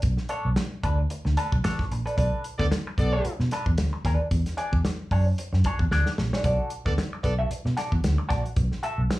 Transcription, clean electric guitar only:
0.29 D4 A4 C#5
0.56 muted clean electric guitar stroke
0.83 D4 A4 B4
0.99 muted clean electric guitar stroke
1.11 muted clean electric guitar stroke
1.25 muted clean electric guitar stroke
1.37 D4 A4 B4
1.52 muted clean electric guitar stroke
1.64 D4 A4 C#5
1.92 muted clean electric guitar stroke
2.06 D4 A4 B4
2.17 D4 A4 B4
2.60 muted clean electric guitar stroke
2.71 muted clean electric guitar stroke
2.87 muted clean electric guitar stroke
3.13 D4 A4 C#5
3.26 muted clean electric guitar stroke
3.41 muted clean electric guitar stroke
3.52 D4 A4 B4
3.66 muted clean electric guitar stroke
3.93 muted clean electric guitar stroke
4.06 D4 A4 B4
4.21 muted clean electric guitar stroke
4.57 D4 G#4 D5
4.85 muted clean electric guitar stroke
5.12 D4 G#4 C#5
5.27 muted clean electric guitar stroke
5.38 muted clean electric guitar stroke
5.53 muted clean electric guitar stroke
5.66 D4 G#4 C#5
5.80 muted clean electric guitar stroke
5.92 D4 G#4 D5
6.18 muted clean electric guitar stroke
6.33 D4 G#4 C#5
6.45 F#4 A4 D5
6.86 muted clean electric guitar stroke
6.98 muted clean electric guitar stroke
7.13 muted clean electric guitar stroke
7.39 F#4 A4 E5
7.51 muted clean electric guitar stroke
7.66 muted clean electric guitar stroke
7.77 F#4 A4 D5
7.92 muted clean electric guitar stroke
8.18 muted clean electric guitar stroke
8.29 F#4 A4 D5
8.44 muted clean electric guitar stroke
8.83 F#4 A4 E5
9.10 muted clean electric guitar stroke

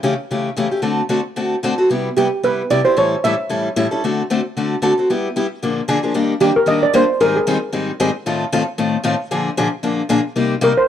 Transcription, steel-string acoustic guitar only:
0.03 C#3 E3 A3 C#4 G4
0.31 C#3 E3 A3 C#4 G4
0.56 C#3 E3 A3 C#4 G4
0.71 A3 C#4 G4
0.82 D3 A3 C4 F#4 A4
1.09 D3 A3 C4 F#4 A4
1.36 D3 A3 C4 F#4 A4
1.63 D3 A3 C4 F#4 A4
1.78 C4 F#4 A4
1.90 C3 G3 B3 E4 G4
2.17 C3 G3 B3 E4 G4
2.43 C3 G3 B3 E4 G4
2.70 C3 G3 B3 E4 G4
2.85 B3 E4 G4
2.96 A2 E3 G3 C#4 E4 A4
3.24 A2 E3 G3 C#4 E4 A4
3.49 A2 E3 G3 C#4 E4 A4
3.76 A2 E3 G3 C#4 E4 A4
3.91 G3 C#4 E4 A4
4.04 D3 A3 C4 F#4 A4
4.30 D3 A3 C4 F#4 A4
4.57 D3 A3 C4 F#4 A4
4.82 D3 A3 C4 F#4 A4
4.98 C4 F#4 A4
5.10 G3 B3 E4 G4
5.36 G3 B3 E4 G4
5.62 A#2 D3 F3 A#3 D4 G#4
5.88 A#2 D3 F3 A#3 D4 G#4
6.03 F3 A#3 D4 G#4
6.14 D#3 G3 A#3 D4 G4
6.40 D#3 G3 A#3 D4 G4
6.66 D#3 G3 A#3 D4 G4
6.93 D#3 G3 A#3 D4 G4
7.20 G#2 D#3 G3 C4 D#4 G#4
7.47 G#2 D#3 G3 C4 D#4 G#4
7.73 G#2 D#3 G3 C4 D#4 G#4
8.00 G#2 D#3 G3 C4 D#4 G#4
8.26 A2 D#3 A3 C4 F4 A4
8.52 A2 D#3 A3 C4 F4 A4
8.78 A2 D#3 A3 C4 F4 A4
9.03 A2 D#3 A3 C4 F4 A4
9.31 A#2 D3 F3 A#3 D4 G#4
9.57 A#2 D3 F3 A#3 D4 G#4
9.83 A#2 D3 F3 A#3 D4 G#4
10.09 A#2 D3 F3 A#3 D4 G#4
10.36 C3 G3 A#3 D#4 G4
10.61 C3 G3 A#3 D#4 G4

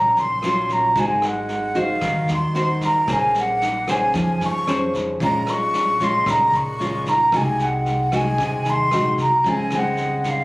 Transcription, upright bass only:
Already playing: A#1
0.17 A#1
0.96 G#1
2.02 D#2
2.29 D#2
3.08 A#1
4.14 F2
4.40 F2
5.21 A#1
6.26 C#2
6.52 C#2
7.32 C2
8.38 D#2
8.66 D#2
8.93 A#1
9.18 C2
9.44 C#2

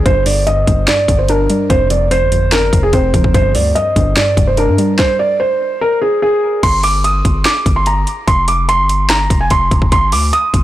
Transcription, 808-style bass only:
0.06 G1
0.67 G1
1.08 G1
1.70 F1
2.21 G1
2.73 F1
2.93 F1
3.14 F1
3.24 F1
3.34 G1
3.55 D2
3.96 G1
4.37 F1
4.68 G2
6.63 G1
7.25 G1
7.66 G1
8.28 F1
8.79 G1
9.30 F1
9.51 F1
9.71 F1
9.82 F1
9.92 G1
10.12 D2
10.54 G1

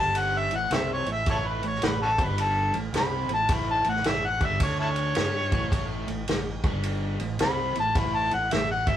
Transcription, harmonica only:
0.00 A5
0.17 F#5
0.37 E5
0.56 F#5
0.74 E5
0.93 C#5
1.12 E5
1.30 E4 A4 C#5
1.47 B4
1.67 C#5
1.85 B4
2.02 C#4 F#4 A4
2.23 B4
2.41 A4
2.97 B5
3.34 A5
3.53 B5
3.70 A5
3.89 F#5
4.08 E5
4.26 F#5
4.45 E5
4.63 C#5
4.80 E4 A4 C#5
7.41 B5
7.80 A5
7.98 B5
8.15 A5
8.34 F#5
8.53 E5
8.71 F#5
8.89 E5

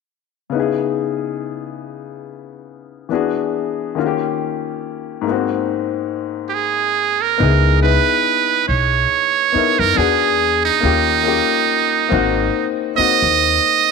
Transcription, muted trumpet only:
6.49 G4
6.54 G#4
7.22 A#4
7.83 B4
8.68 C#5
9.79 A#4
9.97 G#4
10.65 D#4
12.96 D#5

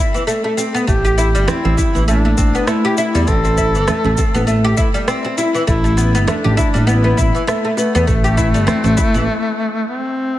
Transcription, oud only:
Already playing: E4
0.14 E3
0.27 A3
0.44 A3
0.57 C4
0.75 B3
0.87 A3
1.05 G4
1.18 E4
1.35 G3
1.48 C4
1.65 C4
1.78 E4
1.95 E3
2.08 A3
2.25 A3
2.37 C4
2.55 B3
2.67 A3
2.85 G4
2.98 E4
3.15 G3
3.27 C4
3.45 C4
3.58 E4
3.75 E3
3.88 A3
4.05 A3
4.18 C4
4.34 B3
4.47 A3
4.64 G4
4.77 E4
4.94 G3
5.08 C4
5.25 C4
5.38 E4
5.55 E3
5.67 A3
5.84 A3
5.97 B3
6.15 B3
6.28 A3
6.44 G4
6.57 E4
6.74 G3
6.87 B3
7.04 B3
7.17 E4
7.35 E3
7.47 A3
7.65 A3
7.78 B3
7.95 B3
8.07 A3
8.24 G4
8.37 E4
8.54 G3
8.67 C4
8.84 C4
8.97 E4
9.14 E3

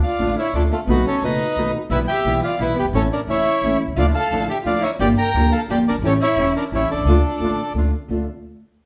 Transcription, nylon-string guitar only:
0.19 D3 A3 D4 F4
0.55 D3 A3 D4 F4
0.88 B2 D#3 A3 B3 F#4
1.24 B2 D#3 A3 B3 F#4
1.57 B2 D#3 A3 B3 F#4
1.91 B2 E3 G3 B3 E4
2.25 B2 E3 G3 B3 E4
2.59 B2 E3 G3 B3 E4
2.94 E3 A3 C#4 E4
3.27 E3 A3 C#4 E4
3.63 E3 A3 C#4 E4
3.97 D3 F3 A3 D4 E4
4.32 D3 F3 A3 D4 E4
4.65 D3 F3 A3 D4 E4
5.00 D3 F3 A#3 D4 G4
5.36 D3 F3 A#3 D4 G4
5.68 D3 F3 A#3 D4 G4
6.03 E3 G3 C#4 E4
6.36 E3 G3 C#4 E4
6.71 E3 G3 C#4 E4
7.06 D3 A3 D4 F4
7.39 D3 A3 D4 F4
7.75 D3 A3 D4 F4
8.08 D3 A3 D4 F4

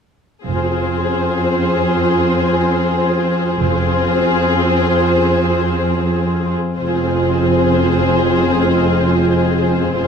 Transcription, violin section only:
0.46 G#4 C5
3.60 G#4 C5
6.78 G#4 C5
9.95 G#4 C5

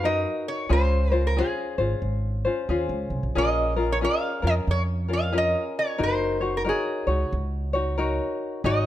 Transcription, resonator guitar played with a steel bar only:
0.05 D#5
0.48 C#5
0.73 C5
1.27 A#4
1.38 G#4
3.38 D#5
3.92 C#5
4.05 F5
4.47 D#5
4.71 C#5
5.13 F5
5.38 D#5
5.79 C#5
6.03 C5
6.57 A#4
6.69 G#4
8.66 D#5

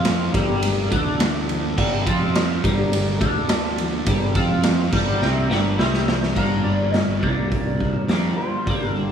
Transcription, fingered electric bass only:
Already playing: F2
0.34 G1
0.91 D2
1.78 G1
2.06 F2
2.64 G1
3.21 D2
4.06 G1
4.35 F2
4.92 G1
5.21 C2
5.50 G1
5.78 C2
6.36 G1
6.65 G1
7.07 G1
7.23 C2
8.08 F2
8.67 G1
8.95 G1

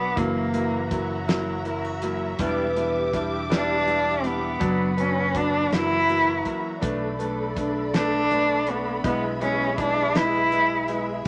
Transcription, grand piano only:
0.16 F#3 A#3 E4
0.53 F#3 A#3 E4
0.91 F#3 A#3 E4
1.28 F#3 A#3 E4
1.65 A#3 E4
2.03 F#3 A#3 E4
2.40 G3 D4 E4
2.76 G3 D4 E4
3.13 G3 D4 E4
3.50 G3 D4 E4
3.86 G3 D4 E4
4.23 G3 D4 E4
4.60 F#3 B3 D4
4.97 F#3 B3 D4
5.34 F#3 B3 D4
5.71 F#3 A#3 E4
6.09 F#3 A#3 E4
6.45 F#3 A#3 E4
6.81 A3 B3 D4
7.19 A3 B3 D4
7.56 A3 B3 D4
7.93 A3 B3 D4
8.31 A3 B3 D4
8.68 A3 B3 D4
9.04 G#3 B3 E4
9.41 G#3 B3 E4
9.78 G#3 B3 E4
10.15 G#3 B3 E4
10.52 G#3 B3 E4
10.88 G#3 B3 E4

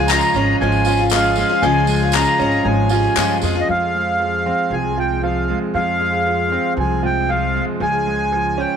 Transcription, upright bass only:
Already playing: C#2
0.34 G#1
0.61 G#1
1.62 C#2
2.39 G#1
2.65 G#1
3.17 G2
3.43 F2
3.69 F2
4.70 C2
5.74 F2
6.77 C2
7.80 C#2

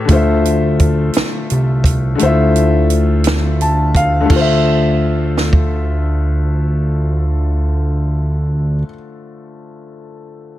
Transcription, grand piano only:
Already playing: A2 A3 B4 C#5
0.05 D3 A3
0.10 F4 C5
0.15 E5
2.15 D3 A3
2.21 E4 C5
2.25 F4 E5
3.62 A5
3.97 F5
4.21 D3
4.26 A3
4.31 F4
4.36 C5
4.41 E5

